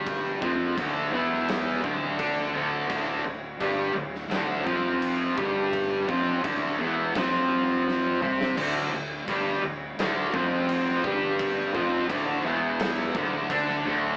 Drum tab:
CC |x---x---x---x---|x---x---x---x---|x---x---x-------|x---x---x---x---|
SD |-------oo-------|-------oo-------|--------o---o--o|--------o----o--|
T2 |----------------|----------------|--------------o-|----------------|
BD |o-o-o-----o-o---|o---o-----o---o-|o-o-o---o-------|o---o-----o---o-|

CC |x---x---x---x---|
SD |--------o----o--|
T2 |----------------|
BD |o-o-o-----o-o---|